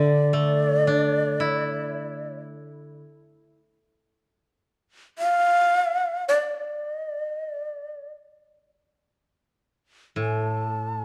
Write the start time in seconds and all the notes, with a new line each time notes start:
Already playing: D3 D5
0.33 A3
0.87 D4
1.40 E4
5.19 F5
6.28 D5
6.93 D#5
7.10 D5
7.29 D#5
7.47 D5
10.16 A2
10.21 G#5
10.36 A5